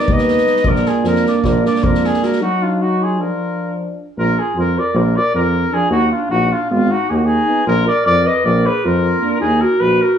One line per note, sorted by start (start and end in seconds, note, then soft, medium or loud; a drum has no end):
0.00 0.64 B3 medium
0.00 0.65 D#4 medium
0.00 0.11 A#4 medium
0.00 0.14 D5 medium
0.08 0.39 D#2 medium
0.08 0.67 B4 medium
0.08 kick medium
0.13 0.71 D#5 loud
0.18 snare soft
0.28 snare soft
0.37 snare soft
0.46 snare soft
0.56 snare soft
0.64 0.87 A#1 medium
0.64 2.43 A#3 medium
0.64 2.42 D4 medium
0.64 0.86 F4 medium
0.64 kick medium
0.69 0.89 A#4 loud
0.75 snare soft
0.85 1.05 F4 medium
0.85 1.09 G#4 medium
0.85 snare soft
1.04 1.26 F2 medium
1.04 1.25 F4 medium
1.04 1.27 A#4 medium
1.04 snare soft
1.15 snare soft
1.26 1.46 A#4 medium
1.26 1.48 D5 medium
1.26 snare soft
1.44 1.66 A#1 loud
1.44 1.65 F4 medium
1.44 1.66 A#4 medium
1.44 kick medium
1.44 snare soft
1.65 1.86 A#4 medium
1.65 1.86 D5 medium
1.65 snare soft
1.75 snare soft
1.83 2.15 F2 medium
1.83 2.04 F4 medium
1.83 2.07 A#4 medium
1.83 kick medium
1.94 snare soft
2.04 2.24 F4 medium
2.04 2.26 G#4 medium
2.04 snare soft
2.13 snare soft
2.23 2.41 F#4 medium
2.23 2.41 A#4 medium
2.23 snare soft
2.32 snare soft
2.40 3.21 F#3 medium
2.40 3.20 D#4 medium
2.40 2.64 D#4 medium
2.40 2.64 F#4 medium
2.62 2.83 D4 medium
2.62 2.84 F4 medium
2.81 3.03 D#4 medium
2.81 3.05 F#4 medium
3.02 3.20 F4 medium
3.02 3.22 G#4 medium
3.19 4.01 F3 medium
3.19 4.00 D4 medium
3.19 3.79 F4 medium
3.19 3.80 A#4 medium
4.17 4.38 A#1 medium
4.17 4.40 F4 medium
4.17 4.41 A#4 loud
4.39 4.57 F4 medium
4.39 4.57 G#4 medium
4.55 4.77 F2 medium
4.55 4.81 F4 medium
4.55 4.80 A#4 medium
4.78 4.99 A#4 medium
4.78 4.99 D5 medium
4.94 5.16 A#1 loud
4.94 5.20 F4 medium
4.94 5.18 A#4 medium
5.17 5.35 A#4 medium
5.17 5.35 D5 loud
5.34 5.65 F2 loud
5.34 5.74 F4 medium
5.34 5.75 A#4 loud
5.71 5.89 F3 medium
5.71 5.87 D4 medium
5.71 5.90 F4 medium
5.71 5.91 G#4 loud
5.90 6.12 D#2 medium
5.90 6.10 D#4 medium
5.90 6.10 F#4 medium
6.11 6.30 D4 medium
6.11 6.29 F4 medium
6.30 6.52 A#1 medium
6.30 6.53 D#4 medium
6.30 6.54 F#4 loud
6.52 6.70 D4 medium
6.52 6.70 F4 medium
6.70 6.91 G#1 medium
6.70 6.92 B3 medium
6.70 6.93 F4 medium
6.90 7.09 D#4 medium
6.90 7.11 F#4 loud
7.09 7.41 D#2 loud
7.09 7.15 D#4 medium
7.09 7.17 G#4 medium
7.15 7.24 D#4 medium
7.15 7.27 F#4 medium
7.24 7.65 D#4 medium
7.24 7.66 G#4 medium
7.46 7.63 B3 medium
7.46 7.62 D#4 medium
7.66 7.88 A#1 loud
7.66 7.85 F4 medium
7.66 7.86 A#4 loud
7.87 8.04 A#4 medium
7.87 8.04 D5 medium
8.04 8.27 F2 loud
8.04 8.27 A#4 medium
8.04 8.28 D5 loud
8.26 8.46 B4 medium
8.26 8.46 D#5 loud
8.45 8.66 A#1 loud
8.45 8.68 A#4 medium
8.45 8.68 D5 loud
8.66 8.86 G#4 medium
8.66 8.87 B4 medium
8.84 9.16 F2 loud
8.84 9.40 F4 loud
8.84 9.41 A#4 medium
9.20 9.36 A#3 medium
9.20 9.38 D4 medium
9.40 9.63 D#2 medium
9.40 9.64 D#4 loud
9.40 9.63 G#4 medium
9.61 9.80 F#4 medium
9.61 9.82 A#4 medium
9.79 10.01 A#1 medium
9.79 10.02 F#4 medium
9.79 10.03 B4 loud
10.02 10.18 F#4 medium
10.02 10.18 A#4 medium